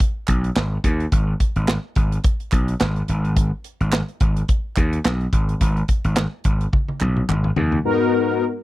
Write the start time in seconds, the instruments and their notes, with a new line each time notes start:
0.00 kick, closed hi-hat
0.28 slap bass B1, kick, clap, closed hi-hat
0.44 closed hi-hat
0.56 slap bass G#1, snare, clap
0.84 slap bass D#2, kick, closed hi-hat
1.00 closed hi-hat
1.12 slap bass G#1, kick, closed hi-hat
1.40 kick, closed hi-hat
1.56 slap bass G#1, closed hi-hat
1.68 snare, clap
1.95 slap bass G#1, kick, closed hi-hat
2.12 closed hi-hat
2.24 kick, closed hi-hat
2.40 closed hi-hat
2.52 slap bass B1, kick, clap, closed hi-hat
2.68 closed hi-hat
2.80 slap bass G#1, snare, clap
2.96 closed hi-hat
3.08 slap bass G#1, closed hi-hat
3.25 closed hi-hat
3.36 kick, closed hi-hat
3.64 closed hi-hat
3.81 slap bass G#1, closed hi-hat
3.92 snare, clap
4.08 closed hi-hat
4.20 slap bass G#1, kick, closed hi-hat
4.37 closed hi-hat
4.48 kick, closed hi-hat
4.76 slap bass D#2, kick, clap, closed hi-hat
4.93 closed hi-hat
5.05 slap bass B1, snare, clap
5.21 closed hi-hat
5.33 slap bass G#1, kick, closed hi-hat
5.49 closed hi-hat
5.61 slap bass G#1, kick, closed hi-hat
5.77 closed hi-hat
5.88 kick, closed hi-hat
6.04 slap bass G#1, closed hi-hat
6.16 snare, clap
6.44 slap bass G#1, kick, closed hi-hat
6.61 closed hi-hat
6.73 kick, high tom
6.88 high tom
7.00 slap bass B1, clap, mid tom
7.17 mid tom
7.29 slap bass G#1, clap, mid tom
7.44 mid tom
7.56 slap bass D#2, floor tom
7.72 floor tom
7.85 analog polysynth G#2 B3 D#4 F#4 A#4